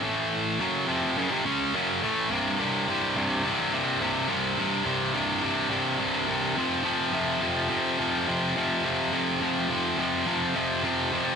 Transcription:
X:1
M:4/4
L:1/16
Q:1/4=106
K:none
V:1 name="Distorted electric guitar" clef=bass
[A,,E,A,]4 [^F,,_D,^F,]2 [=F,,C,=F,]2 [^F,,D,] [=F,,C,] [D,_A,_D]2 [^F,,D,^F,]2 [=A,,E,=A,]2 | [C,,G,,C,]2 [C,,G,,C,]2 [C,,G,,C,]2 [C,,G,,C,]2 [C,,G,,C,]2 [C,,G,,C,]2 [C,,G,,C,]2 [C,,G,,C,]2 | [C,,G,,C,]2 [C,,G,,C,]2 [C,,G,,C,]2 [C,,G,,C,]2 [C,,G,,C,]2 [C,,G,,C,]2 [C,,G,,C,]2 [F,,C,F,]2 | [F,,C,F,]2 [F,,C,F,]2 [F,,C,F,]2 [F,,C,F,]2 [F,,C,F,]2 [F,,C,F,]2 [F,,C,F,]2 [F,,C,F,]2 |
[F,,C,F,]2 [F,,C,F,]2 [F,,C,F,]2 [F,,C,F,]2 [F,,C,F,]2 [F,,C,F,]2 [F,,C,F,]2 [F,,C,F,]2 |]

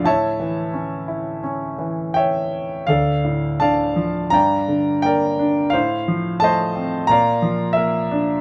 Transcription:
X:1
M:4/4
L:1/8
Q:1/4=86
K:Aphr
V:1 name="Grand piano"
[^cea]4 z2 [ceg]2 | [Adf]2 [dfa]2 [dgb]2 [Bdg]2 | [cf]2 [c_ea]2 [dfb]2 [B=e]2 |]
V:2 name="Grand piano" clef=bass
A,, E, ^C E C E,3 | D,, A,, D, F, G,, D, B, D | A,, F, A, C B,, F, B, D |]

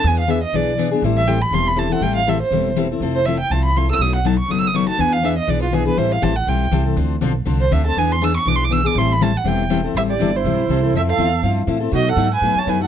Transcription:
X:1
M:4/4
L:1/8
Q:"Swing" 1/4=242
K:Am
V:1 name="Violin"
^g f e ^d =d2 z2 | z e g b c' b a ^f | g f e c3 z2 | z c e g a b c' e' |
^d' ^f a ^c' (3d' e' d' c' a | ^g f e ^d =d F ^G B | c f a ^f g2 z2 | z4 z c e a |
^g c' e' ^c' (3d' =c' d' e' d' | c' b a ^f g2 z2 | e d2 c4- c | e f3 z4 |
^d ^f2 ^g2 a g f |]
V:2 name="Accordion"
z8 | z8 | z8 | z8 |
z8 | z8 | z8 | z8 |
z8 | z8 | G G2 E4- E | A A3 z4 |
^F A2 B2 ^c B A |]
V:3 name="Steel-string acoustic guitar"
[E,B,D^G] z [E,B,DG] z [E,B,DG] z [E,B,DG] [B,DG] | [E,G,CEA] z [E,G,CEA] z [E,G,CEA] z [E,G,CEA] [CEA] | [E,G,CEA] z [E,G,CEA] z [E,G,CEA] z [E,G,CEA] [CEA] | [F,CEA] z [F,CEA] z [F,CEA] z [F,CEA] [CEA] |
[B,,^F,A,^D^F] z [B,,F,A,DF] z [B,,F,A,DF] z [B,,F,A,DF] [A,DF] | [E,B,D^G] z [E,B,DG] z [E,B,DG] z [E,B,DG] [B,DG] | [E,G,CEA] z [E,G,CEA] z [E,G,CEA] z [E,G,CEA] [CEA] | [D,F,CDA] z [D,F,CDA] z [D,F,CDA] z [D,F,CDA] [CDA] |
[E,B,D^G] z [E,B,DG] z [E,B,DG] z [E,B,DG] [B,DG] | [E,G,CEA] z [E,G,CEA] z [E,G,CEA] z [E,G,CEA] [CEA] | [E,G,CEA] z [E,G,CEA] z [E,G,CEA] z [E,G,CEA] [CEA] | [F,CEA] z [F,CEA] z [F,CEA] z [F,CEA] [CEA] |
[B,,^F,A,^D^F] z [B,,F,A,DF] z [B,,F,A,DF] z [B,,F,A,DF] [A,DF] |]
V:4 name="Upright bass" clef=bass
E,,4 B,,,4 | A,,,4 E,,,4 | A,,,4 E,,,4 | F,,,4 C,,4 |
B,,,4 ^F,,,4 | E,,4 B,,,4 | A,,,2 A,,,2 B,,,2 C,,2 | D,,2 B,,,2 C,,2 D,,2 |
E,,4 B,,,4 | A,,,4 E,,,4 | A,,,2 G,,,2 B,,,2 C,,2 | F,,2 E,,2 G,,2 A,,2 |
B,,2 ^G,,2 A,, z ^F,,2 |]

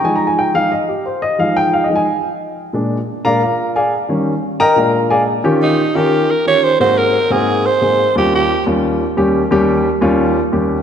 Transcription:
X:1
M:4/4
L:1/8
Q:1/4=177
K:Ebmix
V:1 name="Alto saxophone"
z8 | z8 | z8 | z8 |
z E2 G2 B d c | c B2 A2 c3 | G G2 z4 z | z8 |]
V:2 name="Grand piano"
(3a b a g f e G c e | f g (3f e a- a z3 | z3 [B=dfb] [FBdf]2 [Adfa] z | z3 [Begb] [FB=df]2 [Adfa] z |
[E,DFG]2 z [E,DFB]2 z [E,DFG] z | [A,,B,C_G]2 z [A,,B,CG]2 z [A,,B,CA] z | [E,,G,DF]2 z [E,,G,DF]2 z [E,,G,DG] z | [E,,G,DG]2 z [E,,G,DF]2 z [E,,G,DG] z |]
V:3 name="Grand piano" clef=bass
[F,A,E]3 [F,A,E] z4 | [F,A,E]3 [F,A,E] z4 | [B,,A,=D] z2 [B,,A,D] z4 | [E,G,D] z3 [B,,A,=D]4 |
z8 | z8 | z8 | z8 |]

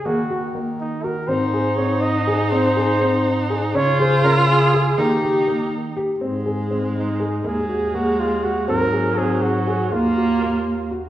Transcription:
X:1
M:5/8
L:1/8
Q:1/4=122
K:Abmix
V:1 name="Flugelhorn"
G2 z E B | c2 d e2 | c4 z | d c B A2 |
=G3 z2 | z3 E2 | A2 G F G | B2 A G2 |
F4 z |]
V:2 name="Grand piano"
B, G B,2 G | C A C2 A | C A C2 A | D A D2 A |
B, =G B,2 G | C A C2 A | B, G B,2 G | C A C2 A |
B, G B,2 G |]
V:3 name="Viola"
z4 z | E4- E- | E4- E | F4- F |
E4 z | A,4- A, | A,4- A, | G,4- G, |
B,4 z |]
V:4 name="Bass clarinet" clef=bass
E,4- E, | A,,4- A,,- | A,,4- A,, | D,4- D, |
E,4- E, | A,,4- A,, | E,,4- E,, | A,,4- A,, |
E,,4- E,, |]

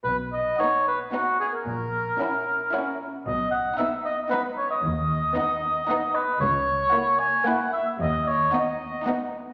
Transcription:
X:1
M:3/4
L:1/16
Q:1/4=113
K:B
V:1 name="Violin section"
z4 f4 f4 | z4 f4 f4 | z4 f4 f4 | z4 f4 f4 |
z4 f4 f4 | z4 f4 f4 |]
V:2 name="Oboe"
B2 d2 c2 B2 F2 G A- | A8- A2 z2 | d2 f2 e2 d2 B2 c d- | d8- d2 B2 |
c6 g2 f2 e2 | d2 c2 d4 z4 |]
V:3 name="Violin section"
z4 D4 D4 | z4 E4 E4 | z4 D4 D4 | z4 D4 D4 |
z4 E4 E4 | z4 D4 D4 |]
V:4 name="Viola section"
z4 B,4 B,4 | z4 C4 C4 | z4 B,4 B,4 | z4 B,4 B,4 |
z4 A,4 A,4 | z4 B,4 B,4 |]
V:5 name="Cello section" clef=bass
B,,4 z8 | A,,4 z8 | B,,4 z8 | D,,4 z8 |
C,,4 z8 | D,,4 z8 |]
V:6 name="Double bass section" clef=bass
B,,,4 z8 | A,,,4 z8 | B,,,4 z8 | D,,4 z8 |
C,,4 z8 | D,,4 z8 |]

